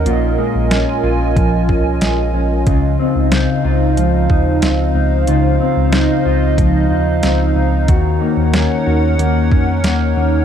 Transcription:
Already playing: A#3 C#4 A#4 D#5
0.06 A#1 A#2 F4 G#5, closed hi-hat
0.38 G#3
0.55 A#1
0.71 C#4, snare, closed hi-hat
1.03 A#1 F4
1.36 A#1 F3, kick, closed hi-hat
1.69 C2 C#4, kick
2.01 A#1 G#3, snare, closed hi-hat
2.34 A#1 C#4
2.67 C#2 C#3 D#4 F4 C5 F5, kick, closed hi-hat
2.99 C4
3.16 C#2
3.32 D#4, snare, closed hi-hat
3.64 C#2 F4
3.97 C#2 F3, closed hi-hat
4.30 D#4, kick
4.62 C#2 C4, snare, closed hi-hat
4.95 C#2 D#4
5.27 C#2 C#3 F4 D#5, closed hi-hat
5.60 C4
5.77 C#2
5.92 D#4, snare, closed hi-hat
6.25 C#2 F4
6.58 C#2 F3, kick, closed hi-hat
6.91 D#2 D#4
7.23 C#2 C4, snare, closed hi-hat
7.56 C#2 D#4
7.88 D#2 D#3 F#4 A#4 C#5 F#5, kick, closed hi-hat
8.21 A#3
8.37 D#2
8.53 C#4, snare, closed hi-hat
8.87 D#2 F#4
9.19 D#2 A#3, closed hi-hat
9.51 F2 C#4, kick
9.84 D#2 A#3, snare, closed hi-hat
10.17 D#2 C#4

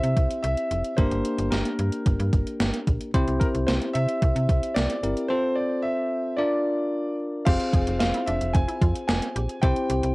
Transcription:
Already playing: C4 E4 G4 C5 E5
0.03 C3, closed hi-hat
0.17 C2, kick, closed hi-hat
0.31 closed hi-hat
0.43 C2 E5, closed hi-hat
0.57 closed hi-hat
0.71 F1, closed hi-hat
0.84 closed hi-hat
0.97 G1 A#3 D4 G4 A#4 C5, kick, closed hi-hat
1.11 G1, closed hi-hat
1.25 closed hi-hat
1.38 G1, closed hi-hat
1.50 G1 A#4, snare, closed hi-hat
1.65 closed hi-hat
1.79 G2, closed hi-hat
1.92 closed hi-hat
2.06 G1, kick, closed hi-hat
2.19 G2, closed hi-hat
2.33 G1, kick, closed hi-hat
2.47 closed hi-hat
2.60 G1, snare, closed hi-hat
2.74 closed hi-hat
2.87 A#1, kick, closed hi-hat
3.01 closed hi-hat
3.14 C2 C4 E4 G4 C5, kick, closed hi-hat
3.28 C2, closed hi-hat
3.40 A#4, kick, closed hi-hat
3.55 C2, closed hi-hat
3.67 C2 C5, snare, closed hi-hat
3.82 closed hi-hat
3.93 C3 E5, closed hi-hat
4.09 closed hi-hat
4.22 C2, kick, closed hi-hat
4.36 C3, closed hi-hat
4.49 C2, kick, closed hi-hat
4.63 closed hi-hat
4.75 C2 D5, snare, closed hi-hat
4.90 closed hi-hat
5.03 G1 C4 E4 G4 A#4, closed hi-hat
5.17 closed hi-hat
5.28 C4 F4 A4 C5
5.55 D5
5.82 E5
6.37 D4 F4 A#4 D5
7.45 F1 C4 F4 G4 G#4 C5 F5, kick, closed hi-hat, crash
7.60 closed hi-hat
7.73 F1 G#4, kick, closed hi-hat
7.87 F1, closed hi-hat
7.99 F1 F5, snare, closed hi-hat
8.14 E4, closed hi-hat
8.26 F1 D4 E5, closed hi-hat
8.41 F1, closed hi-hat
8.53 F1 C4 G#5, kick, closed hi-hat
8.68 E4, closed hi-hat
8.81 F2 F4, kick, closed hi-hat
8.95 closed hi-hat
9.08 F1 G#4 G#5, snare, closed hi-hat
9.22 closed hi-hat
9.36 A#1 G4, closed hi-hat
9.49 closed hi-hat
9.62 C2 C4 E4 G4 C5 G5, kick, closed hi-hat
9.76 closed hi-hat
9.90 C2 G4, closed hi-hat
10.03 C2, closed hi-hat

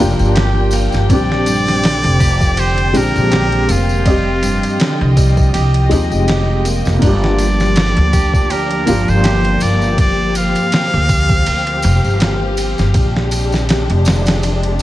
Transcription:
Already playing: F3 A#3 D4 G5
0.00 F1 F3 D4 F4 G4
0.19 G1, tambourine
0.35 G4, snare, ride, tambourine
0.71 A#3, ride, tambourine
0.92 G1, snare, tambourine
1.09 A#1 D3 G3 C4 D4 D5, kick, ride, tambourine
1.14 G4
1.32 snare
1.46 G2, ride, tambourine
1.66 snare, tambourine
1.83 D3, snare, ride, tambourine
2.04 F1, ride
2.20 G4, kick, ride, tambourine
2.41 kick, tambourine
2.57 G4 C5, ride, tambourine
2.78 ride
2.93 A#1 F3 G#3 C4 D4 G4 A#4, ride, tambourine
3.16 A#1, tambourine
3.31 G4, snare, ride, tambourine
3.52 ride
3.68 F1 A#3 F4, ride, tambourine
3.89 tambourine
4.05 F3 G3 C4 D#5, kick, ride, tambourine
4.10 G4
4.42 G2, ride, tambourine
4.63 ride, tambourine
4.79 D3, snare, ride, tambourine
5.01 C2
5.17 G3, kick, ride, tambourine
5.37 kick, tambourine
5.54 C2 G4, ride, tambourine
5.74 ride
5.89 D#2 F3 G#3 C4 D#4 G4, ride, tambourine
6.12 F1, tambourine
6.28 G4, snare, ride, tambourine
6.65 A#3, ride, tambourine
6.85 F1, snare, tambourine
6.99 G1 G3 A#3 D4 G4, kick, ride, tambourine
7.04 F4 G4 D5
7.24 snare
7.39 G2, ride, tambourine
7.60 snare, tambourine
7.76 D3, snare, ride, tambourine
7.97 D2, ride
8.13 G4, kick, ride, tambourine
8.33 kick, tambourine
8.50 G4 A#4, ride, tambourine
8.71 ride
8.86 G1 F3 A#3 D4 F4 G4, ride, tambourine
9.08 G1 C5, tambourine
9.24 G4, snare, ride, tambourine
9.45 ride
9.60 G1 A#3 D5, ride, tambourine
9.82 tambourine
9.97 C4 D5, kick, ride, tambourine
10.35 F5, ride, tambourine
10.55 ride, tambourine
10.72 snare, ride, tambourine
10.93 D2
11.09 kick, ride, tambourine
11.28 kick, tambourine
11.46 D2, ride, tambourine
11.67 ride
11.82 F1, ride, tambourine
12.04 G1, tambourine
12.20 snare, ride, tambourine
12.57 ride, tambourine
12.78 G1, snare, tambourine
12.94 A#1 C3 G#3 D4, kick, ride, tambourine
13.17 snare
13.31 ride, tambourine
13.52 snare, tambourine
13.69 snare, ride, tambourine
13.90 F1, ride
14.05 snare, ride, tambourine
14.26 snare, ride, tambourine
14.43 ride, tambourine
14.63 ride

